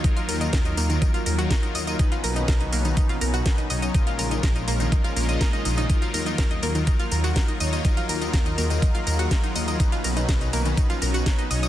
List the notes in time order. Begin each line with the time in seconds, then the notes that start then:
Already playing: D#3 F#3 A#3 F4
0.04 F#3 D#4 F4 A#4 D#5, kick, closed hi-hat, tambourine
0.17 F4 F5, closed hi-hat, tambourine
0.29 D#2 A#4 A#5, open hi-hat, tambourine
0.41 D#4 D#5, closed hi-hat, tambourine
0.53 D#2 A#4 A#5, kick, snare, closed hi-hat, tambourine
0.65 D#4 D#5, closed hi-hat, tambourine
0.77 D#2 A#3 A#4, open hi-hat, tambourine
0.90 D#3 D#4, closed hi-hat, tambourine
1.02 D#4 D#5, kick, closed hi-hat, tambourine
1.14 F4 F5, closed hi-hat, tambourine
1.26 D#2 A#4 A#5, open hi-hat, tambourine
1.38 F#3 D#4 F4 F#4 A#4 F#5, closed hi-hat, tambourine
1.51 A#4 A#5, kick, snare, closed hi-hat, tambourine
1.63 D#4 D#5, closed hi-hat, tambourine
1.75 D#2 D#5 D#6, open hi-hat, tambourine
1.87 D#5 D#6, closed hi-hat, tambourine
1.99 B2 C#3 F#3 B3 C#4 D#4 B4 D#5, kick, closed hi-hat, tambourine
2.12 F4 F5, closed hi-hat, tambourine
2.24 B1 A#4 A#5, open hi-hat, tambourine
2.36 D#4 D#5, closed hi-hat, tambourine
2.48 B1 A#4 A#5, kick, snare, closed hi-hat, tambourine
2.60 D#4 D#5, closed hi-hat, tambourine
2.72 B1 A#3 A#4, open hi-hat, tambourine
2.85 D#3 D#4, closed hi-hat, tambourine
2.97 D#4 D#5, kick, closed hi-hat, tambourine
3.09 F4 F5, closed hi-hat, tambourine
3.21 B1 A#4 A#5, open hi-hat, tambourine
3.34 F#4 F#5, closed hi-hat, tambourine
3.46 A#4 A#5, kick, snare, closed hi-hat, tambourine
3.58 D#4 D#5, closed hi-hat, tambourine
3.70 B1 F#3 C#4 D#4 C#5 D#5 D#6, open hi-hat, tambourine
3.82 D#5 D#6, closed hi-hat, tambourine
3.94 A#2 F3 G#3 A#3 C#4 D#4 F4 A#4 D#5, kick, closed hi-hat, tambourine
4.07 F4 F5, closed hi-hat, tambourine
4.19 A#1 A#4 A#5, open hi-hat, tambourine
4.31 D#4 D#5, closed hi-hat, tambourine
4.43 A#1 A#4 A#5, kick, snare, closed hi-hat, tambourine
4.56 D#4 D#5, closed hi-hat, tambourine
4.68 A#1 A#3 A#4, open hi-hat, tambourine
4.80 D#3 D#4, closed hi-hat, tambourine
4.92 D#4 D#5, kick, closed hi-hat, tambourine
5.04 F4 F5, closed hi-hat, tambourine
5.16 A#1 A#2 G#3 A#3 C#4 F4 A#4, open hi-hat, tambourine
5.29 A#2 G#3 C#4 F4 D#5 D#6, closed hi-hat, tambourine
5.41 A#4 A#5, kick, snare, closed hi-hat, tambourine
5.53 D#4 D#5, closed hi-hat, tambourine
5.65 A#1 D#4 D#5, open hi-hat, tambourine
5.78 D#4 D#5, closed hi-hat, tambourine
5.90 D#3 F#3 D#4 F4 A#4 D#5, kick, closed hi-hat, tambourine
6.02 F4 F5, closed hi-hat, tambourine
6.14 D#2 A#4 A#5, open hi-hat, tambourine
6.26 D#4 D#5, closed hi-hat, tambourine
6.38 D#2 A#4 A#5, kick, snare, closed hi-hat, tambourine
6.51 D#4 D#5, closed hi-hat, tambourine
6.63 D#2 A#3 A#4, open hi-hat, tambourine
6.75 D#3 D#4, closed hi-hat, tambourine
6.87 D#4 D#5, kick, closed hi-hat, tambourine
6.99 F4 F5, closed hi-hat, tambourine
7.12 D#2 A#4 A#5, open hi-hat, tambourine
7.24 F#4 F#5, closed hi-hat, tambourine
7.36 A#4 A#5, kick, snare, closed hi-hat, tambourine
7.48 D#4 D#5, closed hi-hat, tambourine
7.60 D#2 F#3 D#4 F4 C#5 D#5 D#6, open hi-hat, tambourine
7.73 D#5 D#6, closed hi-hat, tambourine
7.85 F#3 D#4 F4 G#4 A#4 D#5, kick, closed hi-hat, tambourine
7.97 F4 F5, closed hi-hat, tambourine
8.09 D#2 A#4 A#5, open hi-hat, tambourine
8.21 D#4 D#5, closed hi-hat, tambourine
8.34 D#2 A#4 A#5, kick, snare, closed hi-hat, tambourine
8.46 D#4 D#5, closed hi-hat, tambourine
8.58 D#2 A#3 A#4, open hi-hat, tambourine
8.70 D#3 D#4, closed hi-hat, tambourine
8.82 D#4 D#5, kick, closed hi-hat, tambourine
8.95 F4 F5, closed hi-hat, tambourine
9.07 D#2 A#4 A#5, open hi-hat, tambourine
9.19 F#3 D#4 F4 F#4 A#4 F#5, closed hi-hat, tambourine
9.31 A#4 A#5, kick, snare, closed hi-hat, tambourine
9.43 D#4 D#5, closed hi-hat, tambourine
9.55 D#2 D#5 D#6, open hi-hat, tambourine
9.68 D#5 D#6, closed hi-hat, tambourine
9.80 B2 F#3 B3 C#4 D#4 F#4 B4 D#5, kick, closed hi-hat, tambourine
9.92 F4 F5, closed hi-hat, tambourine
10.04 B1 A#4 A#5, open hi-hat, tambourine
10.17 D#4 D#5, closed hi-hat, tambourine
10.29 B1 A#4 A#5, kick, snare, closed hi-hat, tambourine
10.41 D#4 D#5, closed hi-hat, tambourine
10.53 B1 A#3 A#4, open hi-hat, tambourine
10.65 D#3 D#4, closed hi-hat, tambourine
10.77 D#4 D#5, kick, closed hi-hat, tambourine
10.90 F4 F5, closed hi-hat, tambourine
11.02 B1 A#4 A#5, open hi-hat, tambourine
11.14 F#4 F#5, closed hi-hat, tambourine
11.26 A#4 A#5, kick, snare, closed hi-hat, tambourine
11.39 D#4 D#5, closed hi-hat, tambourine
11.51 B1 F#3 C#4 D#4 C#5 D#5 D#6, open hi-hat, tambourine
11.63 D#5 D#6, closed hi-hat, tambourine